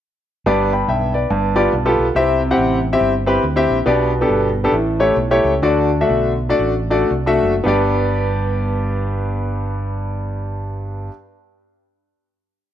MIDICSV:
0, 0, Header, 1, 3, 480
1, 0, Start_track
1, 0, Key_signature, 1, "major"
1, 0, Tempo, 425532
1, 523, Time_signature, 4, 2, 24, 8
1, 4844, Tempo, 437956
1, 5804, Tempo, 464037
1, 6764, Tempo, 504626
1, 7724, Tempo, 546946
1, 8204, Tempo, 562852
1, 12534, End_track
2, 0, Start_track
2, 0, Title_t, "Grand piano"
2, 0, Program_c, 0, 0
2, 521, Note_on_c, 0, 43, 67
2, 521, Note_on_c, 0, 62, 64
2, 522, Note_on_c, 0, 59, 74
2, 523, Note_on_c, 0, 67, 61
2, 528, Note_on_c, 0, 74, 81
2, 784, Note_off_c, 0, 62, 0
2, 785, Note_off_c, 0, 59, 0
2, 786, Note_off_c, 0, 67, 0
2, 788, Note_off_c, 0, 74, 0
2, 822, Note_on_c, 0, 83, 56
2, 824, Note_on_c, 0, 79, 47
2, 982, Note_off_c, 0, 79, 0
2, 997, Note_off_c, 0, 83, 0
2, 999, Note_on_c, 0, 79, 64
2, 1008, Note_on_c, 0, 76, 54
2, 1249, Note_off_c, 0, 43, 0
2, 1278, Note_off_c, 0, 79, 0
2, 1283, Note_off_c, 0, 76, 0
2, 1286, Note_on_c, 0, 74, 54
2, 1296, Note_on_c, 0, 71, 41
2, 1470, Note_on_c, 0, 43, 62
2, 1740, Note_off_c, 0, 74, 0
2, 1751, Note_off_c, 0, 71, 0
2, 1756, Note_on_c, 0, 59, 68
2, 1757, Note_on_c, 0, 74, 78
2, 1758, Note_on_c, 0, 67, 62
2, 1760, Note_on_c, 0, 65, 64
2, 1934, Note_off_c, 0, 59, 0
2, 1934, Note_off_c, 0, 74, 0
2, 1935, Note_off_c, 0, 67, 0
2, 1936, Note_off_c, 0, 65, 0
2, 2091, Note_on_c, 0, 65, 68
2, 2093, Note_on_c, 0, 67, 69
2, 2094, Note_on_c, 0, 59, 74
2, 2097, Note_on_c, 0, 69, 80
2, 2204, Note_off_c, 0, 43, 0
2, 2321, Note_off_c, 0, 65, 0
2, 2322, Note_off_c, 0, 59, 0
2, 2322, Note_off_c, 0, 67, 0
2, 2324, Note_off_c, 0, 69, 0
2, 2434, Note_on_c, 0, 60, 76
2, 2434, Note_on_c, 0, 67, 65
2, 2435, Note_on_c, 0, 64, 64
2, 2438, Note_on_c, 0, 48, 64
2, 2438, Note_on_c, 0, 76, 79
2, 2701, Note_off_c, 0, 60, 0
2, 2701, Note_off_c, 0, 64, 0
2, 2701, Note_off_c, 0, 67, 0
2, 2703, Note_off_c, 0, 76, 0
2, 2826, Note_on_c, 0, 64, 63
2, 2828, Note_on_c, 0, 60, 72
2, 2830, Note_on_c, 0, 67, 67
2, 2832, Note_on_c, 0, 78, 75
2, 3125, Note_off_c, 0, 64, 0
2, 3126, Note_off_c, 0, 60, 0
2, 3127, Note_off_c, 0, 67, 0
2, 3128, Note_off_c, 0, 78, 0
2, 3168, Note_off_c, 0, 48, 0
2, 3301, Note_on_c, 0, 60, 77
2, 3301, Note_on_c, 0, 64, 65
2, 3304, Note_on_c, 0, 76, 82
2, 3307, Note_on_c, 0, 67, 66
2, 3515, Note_off_c, 0, 64, 0
2, 3516, Note_off_c, 0, 60, 0
2, 3517, Note_off_c, 0, 76, 0
2, 3518, Note_off_c, 0, 67, 0
2, 3682, Note_on_c, 0, 60, 72
2, 3686, Note_on_c, 0, 64, 62
2, 3690, Note_on_c, 0, 67, 68
2, 3692, Note_on_c, 0, 71, 76
2, 3857, Note_off_c, 0, 60, 0
2, 3859, Note_off_c, 0, 64, 0
2, 3861, Note_off_c, 0, 67, 0
2, 3862, Note_off_c, 0, 71, 0
2, 4016, Note_on_c, 0, 60, 71
2, 4017, Note_on_c, 0, 64, 74
2, 4021, Note_on_c, 0, 67, 74
2, 4024, Note_on_c, 0, 76, 85
2, 4244, Note_off_c, 0, 60, 0
2, 4244, Note_off_c, 0, 64, 0
2, 4246, Note_off_c, 0, 67, 0
2, 4248, Note_off_c, 0, 76, 0
2, 4351, Note_on_c, 0, 59, 75
2, 4357, Note_on_c, 0, 67, 67
2, 4358, Note_on_c, 0, 62, 69
2, 4361, Note_on_c, 0, 47, 65
2, 4364, Note_on_c, 0, 74, 81
2, 4621, Note_off_c, 0, 59, 0
2, 4624, Note_off_c, 0, 62, 0
2, 4624, Note_off_c, 0, 67, 0
2, 4627, Note_off_c, 0, 74, 0
2, 4750, Note_on_c, 0, 59, 67
2, 4753, Note_on_c, 0, 67, 59
2, 4754, Note_on_c, 0, 62, 57
2, 4759, Note_on_c, 0, 69, 74
2, 5046, Note_off_c, 0, 59, 0
2, 5047, Note_off_c, 0, 67, 0
2, 5048, Note_off_c, 0, 62, 0
2, 5050, Note_off_c, 0, 69, 0
2, 5089, Note_off_c, 0, 47, 0
2, 5222, Note_on_c, 0, 59, 71
2, 5224, Note_on_c, 0, 62, 65
2, 5225, Note_on_c, 0, 67, 65
2, 5230, Note_on_c, 0, 69, 84
2, 5317, Note_on_c, 0, 45, 66
2, 5318, Note_off_c, 0, 59, 0
2, 5319, Note_off_c, 0, 62, 0
2, 5320, Note_off_c, 0, 67, 0
2, 5322, Note_off_c, 0, 69, 0
2, 5613, Note_on_c, 0, 57, 74
2, 5616, Note_on_c, 0, 64, 64
2, 5618, Note_on_c, 0, 67, 63
2, 5619, Note_on_c, 0, 73, 84
2, 5785, Note_off_c, 0, 57, 0
2, 5787, Note_off_c, 0, 64, 0
2, 5788, Note_off_c, 0, 67, 0
2, 5789, Note_off_c, 0, 73, 0
2, 5946, Note_on_c, 0, 57, 76
2, 5949, Note_on_c, 0, 64, 66
2, 5950, Note_on_c, 0, 67, 69
2, 5952, Note_on_c, 0, 73, 79
2, 6048, Note_off_c, 0, 45, 0
2, 6164, Note_off_c, 0, 57, 0
2, 6165, Note_off_c, 0, 64, 0
2, 6166, Note_off_c, 0, 67, 0
2, 6167, Note_off_c, 0, 73, 0
2, 6273, Note_on_c, 0, 57, 74
2, 6277, Note_on_c, 0, 62, 64
2, 6278, Note_on_c, 0, 50, 66
2, 6278, Note_on_c, 0, 66, 66
2, 6279, Note_on_c, 0, 74, 75
2, 6540, Note_off_c, 0, 57, 0
2, 6542, Note_off_c, 0, 62, 0
2, 6542, Note_off_c, 0, 66, 0
2, 6543, Note_off_c, 0, 74, 0
2, 6670, Note_on_c, 0, 66, 59
2, 6671, Note_on_c, 0, 62, 64
2, 6672, Note_on_c, 0, 57, 64
2, 6673, Note_on_c, 0, 76, 72
2, 6962, Note_off_c, 0, 66, 0
2, 6963, Note_off_c, 0, 57, 0
2, 6963, Note_off_c, 0, 62, 0
2, 6964, Note_off_c, 0, 76, 0
2, 7010, Note_off_c, 0, 50, 0
2, 7138, Note_on_c, 0, 57, 66
2, 7141, Note_on_c, 0, 62, 68
2, 7144, Note_on_c, 0, 66, 66
2, 7147, Note_on_c, 0, 74, 82
2, 7349, Note_off_c, 0, 57, 0
2, 7351, Note_off_c, 0, 62, 0
2, 7352, Note_off_c, 0, 66, 0
2, 7354, Note_off_c, 0, 74, 0
2, 7530, Note_on_c, 0, 62, 62
2, 7532, Note_on_c, 0, 57, 70
2, 7534, Note_on_c, 0, 66, 65
2, 7536, Note_on_c, 0, 74, 80
2, 7705, Note_off_c, 0, 62, 0
2, 7706, Note_off_c, 0, 57, 0
2, 7707, Note_off_c, 0, 66, 0
2, 7708, Note_off_c, 0, 74, 0
2, 7860, Note_on_c, 0, 62, 64
2, 7865, Note_on_c, 0, 57, 75
2, 7865, Note_on_c, 0, 66, 68
2, 7869, Note_on_c, 0, 76, 80
2, 8086, Note_off_c, 0, 62, 0
2, 8088, Note_off_c, 0, 57, 0
2, 8088, Note_off_c, 0, 66, 0
2, 8090, Note_off_c, 0, 76, 0
2, 8188, Note_on_c, 0, 59, 74
2, 8200, Note_on_c, 0, 62, 64
2, 8208, Note_on_c, 0, 43, 64
2, 8212, Note_on_c, 0, 67, 69
2, 8224, Note_on_c, 0, 74, 84
2, 11115, Note_off_c, 0, 59, 0
2, 11127, Note_off_c, 0, 62, 0
2, 11134, Note_off_c, 0, 43, 0
2, 11139, Note_off_c, 0, 67, 0
2, 11151, Note_off_c, 0, 74, 0
2, 12534, End_track
3, 0, Start_track
3, 0, Title_t, "Fingered electric bass"
3, 0, Program_c, 1, 33
3, 520, Note_on_c, 1, 31, 88
3, 929, Note_off_c, 1, 31, 0
3, 995, Note_on_c, 1, 35, 81
3, 1406, Note_off_c, 1, 35, 0
3, 1470, Note_on_c, 1, 31, 94
3, 1883, Note_off_c, 1, 31, 0
3, 1955, Note_on_c, 1, 35, 78
3, 2207, Note_off_c, 1, 35, 0
3, 2248, Note_on_c, 1, 35, 82
3, 2410, Note_off_c, 1, 35, 0
3, 2424, Note_on_c, 1, 36, 83
3, 2840, Note_off_c, 1, 36, 0
3, 2904, Note_on_c, 1, 33, 83
3, 3320, Note_off_c, 1, 33, 0
3, 3392, Note_on_c, 1, 31, 92
3, 3805, Note_off_c, 1, 31, 0
3, 3875, Note_on_c, 1, 38, 76
3, 4127, Note_off_c, 1, 38, 0
3, 4174, Note_on_c, 1, 34, 72
3, 4334, Note_off_c, 1, 34, 0
3, 4358, Note_on_c, 1, 35, 92
3, 4770, Note_off_c, 1, 35, 0
3, 4838, Note_on_c, 1, 31, 85
3, 5245, Note_off_c, 1, 31, 0
3, 5314, Note_on_c, 1, 33, 80
3, 5729, Note_off_c, 1, 33, 0
3, 5799, Note_on_c, 1, 35, 78
3, 6045, Note_off_c, 1, 35, 0
3, 6084, Note_on_c, 1, 37, 78
3, 6245, Note_off_c, 1, 37, 0
3, 6271, Note_on_c, 1, 38, 81
3, 6689, Note_off_c, 1, 38, 0
3, 6760, Note_on_c, 1, 35, 86
3, 7160, Note_off_c, 1, 35, 0
3, 7233, Note_on_c, 1, 33, 89
3, 7651, Note_off_c, 1, 33, 0
3, 7724, Note_on_c, 1, 36, 75
3, 7970, Note_off_c, 1, 36, 0
3, 8007, Note_on_c, 1, 30, 77
3, 8172, Note_off_c, 1, 30, 0
3, 8201, Note_on_c, 1, 31, 79
3, 11128, Note_off_c, 1, 31, 0
3, 12534, End_track
0, 0, End_of_file